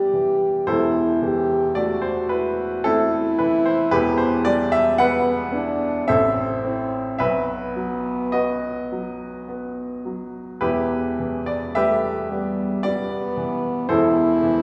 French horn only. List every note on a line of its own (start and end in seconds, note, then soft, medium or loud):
0.00 0.70 G4 medium
0.69 1.23 E4 medium
1.23 1.79 G4 medium
1.77 2.88 F#4 medium
2.87 4.74 E4 loud
5.00 5.55 B3 medium
5.53 6.09 D4 medium
6.07 7.19 C4 medium
7.20 10.01 B3 medium
11.76 12.32 A3 medium
12.31 12.84 G3 medium
12.85 13.91 B3 medium
13.89 14.62 E4 loud